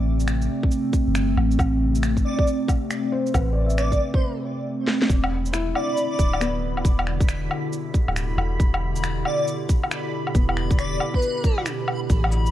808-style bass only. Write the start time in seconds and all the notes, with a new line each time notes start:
Already playing: A1
1.07 G1
1.37 A1
1.59 A1
3.34 A1
5.09 E1
6.19 D1
6.85 E1
8.08 D1
8.37 E1
8.60 E1
10.35 E1
12.10 A1